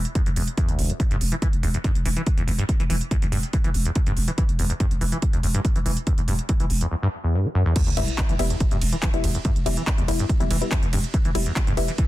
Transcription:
0.05 closed hi-hat
0.15 acid bass E2, kick, closed hi-hat
0.26 808-style bass E1, acid bass E2, closed hi-hat
0.36 808-style bass E1, acid bass E2, open hi-hat
0.48 closed hi-hat
0.57 acid bass E2, kick, closed hi-hat
0.69 808-style bass E1, acid bass D2, closed hi-hat
0.79 808-style bass E1, open hi-hat
0.90 acid bass A2, closed hi-hat
1.00 acid bass E2, kick, closed hi-hat
1.11 808-style bass E1, acid bass G2, closed hi-hat
1.21 808-style bass E1, open hi-hat
1.32 acid bass E3, closed hi-hat
1.42 acid bass E3, kick, closed hi-hat
1.53 808-style bass E1, closed hi-hat
1.63 808-style bass E1, acid bass E2, open hi-hat
1.74 acid bass E2, closed hi-hat
1.84 acid bass G2, kick, closed hi-hat
1.95 808-style bass E1, closed hi-hat
2.05 808-style bass E1, acid bass E3, open hi-hat
2.16 acid bass E3, closed hi-hat
2.27 kick, closed hi-hat
2.38 808-style bass E1, acid bass E2, closed hi-hat
2.47 808-style bass E1, acid bass E2, open hi-hat
2.58 acid bass G2, closed hi-hat
2.69 kick, closed hi-hat
2.80 808-style bass E1, acid bass E3, closed hi-hat
2.90 808-style bass E1, acid bass E3, open hi-hat
3.01 closed hi-hat
3.11 acid bass E2, kick, closed hi-hat
3.22 808-style bass E1, acid bass E2, closed hi-hat
3.32 808-style bass E1, acid bass G2, open hi-hat
3.43 closed hi-hat
3.53 acid bass E3, kick, closed hi-hat
3.64 808-style bass E1, acid bass E3, closed hi-hat
3.74 808-style bass E1, open hi-hat
3.85 acid bass E2, closed hi-hat
3.95 acid bass E2, kick, closed hi-hat
4.07 808-style bass E1, acid bass G2, closed hi-hat
4.17 808-style bass E1, open hi-hat
4.28 acid bass E3, closed hi-hat
4.38 acid bass E3, kick, closed hi-hat
4.49 808-style bass E1, closed hi-hat
4.59 808-style bass E1, acid bass E2, open hi-hat
4.70 acid bass E2, closed hi-hat
4.80 acid bass G2, kick, closed hi-hat
4.91 808-style bass E1, closed hi-hat
5.01 808-style bass E1, acid bass E3, open hi-hat
5.12 acid bass E3, closed hi-hat
5.22 kick, closed hi-hat
5.33 808-style bass E1, acid bass E2, closed hi-hat
5.43 808-style bass E1, acid bass E2, open hi-hat
5.54 acid bass G2, closed hi-hat
5.65 kick, closed hi-hat
5.75 808-style bass E1, acid bass E3, closed hi-hat
5.86 808-style bass E1, acid bass E3, open hi-hat
5.97 closed hi-hat
6.07 acid bass E2, kick, closed hi-hat
6.18 808-style bass E1, acid bass E2, closed hi-hat
6.28 808-style bass E1, acid bass G2, open hi-hat
6.39 closed hi-hat
6.49 acid bass E3, kick, closed hi-hat
6.60 808-style bass E1, acid bass E3, closed hi-hat
6.70 808-style bass E1, open hi-hat
6.81 acid bass E2, closed hi-hat
6.91 acid bass E2
7.03 acid bass G2
7.24 acid bass E2
7.34 acid bass G2
7.45 acid bass G3
7.55 acid bass F#2
7.66 acid bass E2
7.76 kick, closed hi-hat, crash, sub drop
7.87 808-style bass E1, acid bass E2, closed hi-hat
7.97 808-style bass E1, acid bass G2, synth stab G3 B3 E4, open hi-hat, ride
8.08 closed hi-hat
8.18 acid bass E3, kick, clap, closed hi-hat
8.29 808-style bass E1, acid bass E3, closed hi-hat
8.39 808-style bass E1, synth stab G3 B3 E4, open hi-hat, ride
8.50 acid bass E2, closed hi-hat
8.60 acid bass E2, kick, closed hi-hat
8.71 808-style bass E1, acid bass G2, closed hi-hat
8.81 808-style bass E1, open hi-hat, ride
8.93 acid bass E3, closed hi-hat
9.03 acid bass E3, kick, clap, closed hi-hat
9.14 808-style bass E1, synth stab G3 B3 E4, closed hi-hat
9.24 808-style bass E1, acid bass E2, open hi-hat, ride
9.35 acid bass E2, closed hi-hat
9.45 acid bass G2, kick, closed hi-hat
9.56 808-style bass E1, closed hi-hat
9.66 808-style bass E1, acid bass E3, synth stab G3 B3 E4, open hi-hat, ride
9.77 acid bass E3, closed hi-hat
9.87 kick, clap, closed hi-hat
9.98 808-style bass E1, acid bass E2, closed hi-hat
10.08 808-style bass E1, acid bass E2, synth stab G3 B3 E4, open hi-hat, ride
10.19 acid bass G2, closed hi-hat
10.29 kick, closed hi-hat
10.40 808-style bass E1, acid bass E3, synth stab G3 B3 E4, closed hi-hat
10.50 808-style bass E1, acid bass E3, open hi-hat, ride
10.61 synth stab G3 B3 E4, closed hi-hat
10.72 acid bass E2, kick, clap, closed hi-hat
10.83 808-style bass E1, acid bass E2, closed hi-hat
10.93 808-style bass E1, acid bass G2, open hi-hat, ride
11.04 closed hi-hat
11.14 acid bass E3, kick, closed hi-hat
11.25 808-style bass E1, acid bass E3, closed hi-hat
11.35 808-style bass E1, synth stab G3 B3 E4, open hi-hat, ride
11.46 acid bass E2, closed hi-hat
11.56 kick, clap, closed hi-hat
11.67 808-style bass E1, acid bass G2, closed hi-hat
11.77 808-style bass E1, synth stab G3 B3 E4, open hi-hat, ride
11.88 acid bass E3, closed hi-hat
11.98 acid bass E3, kick, closed hi-hat

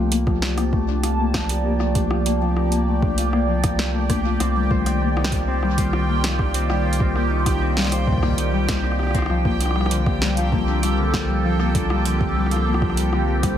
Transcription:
Already playing: analog synth bass C2, analog synth pad F3 C4 G4, harp A3 D4 F4, synth texture G4 G5
0.08 harp A#3, analog synth pad D5 A5, closed hi-hat
0.27 harp F3, kick, cross-stick
0.42 snare
0.57 harp A#3, cross-stick, closed hi-hat
0.73 harp A3, kick
0.88 harp D4
1.03 harp F4, cross-stick, closed hi-hat
1.19 harp A#3
1.34 harp F3, kick, cross-stick, snare
1.49 harp A#4, closed hi-hat
1.65 harp A#3
1.80 harp A3, cross-stick
1.95 harp D4, kick, closed hi-hat
2.11 harp F4, cross-stick
2.26 harp A#3, closed hi-hat
2.41 harp F3
2.57 harp A#4, cross-stick
2.72 harp A#3, closed hi-hat
2.87 harp A3
3.02 harp D4, kick
3.18 harp F4, closed hi-hat
3.33 harp A#3, cross-stick
3.48 harp F3
3.63 harp A#4, kick, cross-stick, closed hi-hat
3.79 harp A#3, snare
3.94 harp A3
4.09 harp D4, kick, cross-stick, closed hi-hat
4.25 harp F4
4.40 analog synth bass C2, analog synth pad D#3, harp C4, cross-stick, closed hi-hat
4.55 harp G3
4.71 analog synth pad F4, harp C5, kick
4.86 harp C4, cross-stick, closed hi-hat
5.01 harp A#3
5.17 harp D#4, cross-stick
5.24 snare
5.32 harp G4, kick, closed hi-hat
5.47 harp C4
5.63 harp G3, cross-stick
5.78 harp C5, kick, closed hi-hat
5.93 harp C4, cross-stick
6.08 harp A#3
6.24 harp D#4, snare, closed hi-hat
6.39 harp G4, kick, cross-stick
6.54 harp C4, closed hi-hat
6.70 harp G3, cross-stick
6.85 harp C5
6.93 closed hi-hat
7.00 harp C4, kick
7.16 harp A#3, cross-stick
7.31 harp D#4
7.46 harp G4, kick, cross-stick, closed hi-hat
7.62 harp C4
7.77 harp G3, snare
7.79 snare
7.82 snare
7.84 snare
7.87 snare
7.90 harp C5, cross-stick, snare, closed hi-hat
8.07 harp C4, kick
8.13 kick
8.18 kick
8.23 harp A#3, kick, cross-stick
8.28 kick
8.33 kick
8.38 harp D#4, closed hi-hat
8.53 harp G3
8.68 harp G4, kick, cross-stick, snare, closed hi-hat
8.76 cross-stick
8.84 harp C4, cross-stick
8.92 cross-stick
8.99 harp G4, cross-stick
9.03 cross-stick
9.07 cross-stick
9.11 harp C4, kick, cross-stick, closed hi-hat
9.18 cross-stick
9.22 cross-stick
9.26 analog synth bass C2, analog synth pad F3, harp F3, cross-stick
9.30 cross-stick
9.34 analog synth pad A#3
9.45 harp A#3, kick
9.60 harp D4, cross-stick, closed hi-hat
9.66 analog synth pad C4, cross-stick
9.71 cross-stick
9.76 harp G3, cross-stick
9.81 analog synth pad G4, cross-stick
9.86 cross-stick
9.91 harp D3, closed hi-hat
10.06 harp G4, kick, cross-stick
10.16 analog synth pad A4
10.22 harp G3, snare
10.37 harp F3, closed hi-hat
10.52 harp A#3, kick
10.68 harp D4
10.83 harp G3, cross-stick, closed hi-hat
10.98 harp D3
11.14 harp G4, kick, cross-stick, snare
11.29 harp G3
11.44 harp F3
11.60 harp A#3, cross-stick
11.75 harp D4, kick, closed hi-hat
11.90 harp G3, cross-stick
12.05 harp D3, closed hi-hat
12.21 harp G4, kick
12.36 harp G3, cross-stick
12.46 cross-stick
12.51 harp F3, closed hi-hat
12.57 cross-stick
12.67 harp A#3
12.74 cross-stick
12.82 harp D4, kick, cross-stick
12.90 cross-stick
12.97 harp G3, closed hi-hat
13.12 harp D3, cross-stick
13.28 harp G4
13.43 harp G3, kick, cross-stick, closed hi-hat

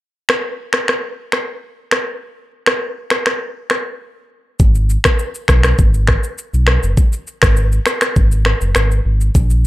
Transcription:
0.29 finger snap, cross-stick
0.73 finger snap, cross-stick
0.88 finger snap, cross-stick
1.32 finger snap, cross-stick
1.91 finger snap, cross-stick
2.66 finger snap, cross-stick
3.10 finger snap, cross-stick
3.26 finger snap, cross-stick
3.70 finger snap, cross-stick
4.60 sub bass G#1, kick, shaker
4.75 shaker
4.90 shaker
5.04 finger snap, kick, cross-stick, shaker
5.19 shaker
5.35 shaker
5.48 sub bass B1, finger snap, kick, cross-stick, shaker
5.63 finger snap, cross-stick, shaker
5.79 sub bass G#1, kick, shaker
5.94 shaker
6.07 finger snap, kick, cross-stick
6.24 shaker
6.38 shaker
6.54 sub bass B1, shaker
6.67 finger snap, cross-stick
6.83 sub bass F#1, shaker
6.97 kick, shaker
7.13 shaker
7.27 shaker
7.42 sub bass G#1, finger snap, kick, cross-stick, shaker
7.57 shaker
7.72 shaker
7.86 finger snap, cross-stick, shaker
8.01 finger snap, cross-stick, shaker
8.16 sub bass G#1, kick, shaker
8.32 shaker
8.45 finger snap, cross-stick
8.61 sub bass F#1, shaker
8.75 sub bass G#1, finger snap, cross-stick, shaker
8.91 shaker
9.05 sub bass G#1
9.21 shaker
9.35 sub bass A#1, kick, shaker
9.50 shaker

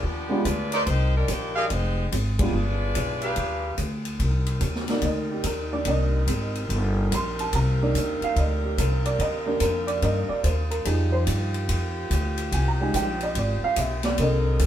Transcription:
0.03 upright bass D#2, saxophone section F3 B3 D4 G4, kick
0.29 grand piano G#3 B3 D4 F4 G4
0.45 upright bass D2, saxophone section G#3 D4 F4 B4, kick, hi-hat pedal, ride
0.72 trumpet section D#4 A#4 C5 D5, ride
0.87 upright bass C2, saxophone section A#3 D#4 G4 C5, kick, ride
1.15 saxophone section G3 D4 D#4 A#4
1.28 upright bass A#1, saxophone section D#3 A#3 D4 G4, kick, hi-hat pedal, ride
1.55 saxophone section G3 D4 D#4 A#4, trumpet section G4 G#4 D#5 F5
1.70 upright bass F1, saxophone section G#3 D#4 G4 C5, kick, ride
2.12 upright bass G#1, kick, hi-hat pedal, ride
2.39 grand piano G#3 B3 D4 F4 G4, saxophone section G#3 D4 F4 B4, kick, ride
2.53 upright bass G1
2.95 upright bass B1, kick, hi-hat pedal, ride
3.21 trumpet section G4 G#4 B4 F5, ride
3.36 upright bass D#2, kick, ride
3.78 upright bass D2, kick, hi-hat pedal, ride
4.05 ride
4.19 upright bass C2, saxophone section C3 C4 D#4 A#4, kick, ride
4.46 ride
4.61 upright bass D#2, kick, hi-hat pedal, ride
4.75 snare
4.88 grand piano A#3 D#4 D5, snare, ride
5.02 upright bass D2, grand piano D#5, kick, ride
5.32 grand piano G4
5.44 upright bass D#2, grand piano A#4, kick, hi-hat pedal, ride
5.72 grand piano D#3 A#3 D4 D5
5.85 upright bass C2, grand piano D#3 A#3 D4 D#5, kick, ride
6.27 upright bass G#1, kick, hi-hat pedal, ride
6.55 ride
6.69 upright bass G1, kick, ride
7.12 upright bass A#1, grand piano C6, kick, hi-hat pedal, ride
7.39 grand piano A5, ride
7.53 upright bass C2, saxophone section A#3, grand piano A#5, kick, ride
7.82 grand piano A#3 D4 D#4
7.94 upright bass D#2, kick, hi-hat pedal, ride
8.21 grand piano F5, muted upright bass stroke, ride
8.36 upright bass D2, grand piano D#5, kick, ride
8.64 grand piano G4
8.78 upright bass C2, grand piano A#4, kick, hi-hat pedal, ride
9.05 grand piano D5, ride
9.19 upright bass D#2, grand piano D#5, kick, ride
9.46 grand piano D#3 A#3 D4 G4
9.60 upright bass F2, grand piano A#4, kick, hi-hat pedal, ride
9.87 grand piano D5, ride
10.02 upright bass G2, grand piano D#3 A#3 D4 D#5, kick, ride
10.29 grand piano D5, muted upright bass stroke
10.44 upright bass D#2, grand piano C5, kick, hi-hat pedal, ride
10.71 grand piano A#4, ride
10.85 upright bass F2, grand piano F3 G3 D#4 G#4, saxophone section F3 G4, kick, ride
11.12 grand piano C5
11.27 upright bass G2, kick, hi-hat pedal, ride
11.54 ride
11.69 upright bass F2, kick, ride
12.10 upright bass D2, kick, hi-hat pedal, ride
12.38 ride
12.52 upright bass C2, grand piano G#5, kick, ride
12.68 grand piano A#5
12.80 grand piano G3 G#3 D#4 G#5
12.94 upright bass A#1, grand piano G5, kick, hi-hat pedal, ride
13.21 grand piano D#5, ride
13.35 upright bass G#1, grand piano D5, kick, ride
13.62 grand piano F5, muted upright bass stroke
13.76 upright bass B1, grand piano E5, kick, hi-hat pedal, ride
14.03 grand piano D5, snare, ride
14.18 upright bass C2, saxophone section C3 A#3 C4 A#4, grand piano D3 D#3 A#3 D#5, kick, ride
14.59 upright bass D2, kick, hi-hat pedal, ride

